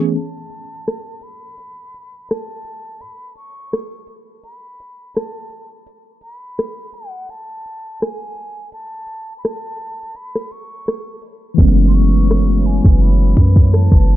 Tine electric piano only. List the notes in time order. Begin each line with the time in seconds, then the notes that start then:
Already playing: E3 A3 B3 C#4 G#4
11.54 E3 A3
11.59 B3 C#4
11.64 G#3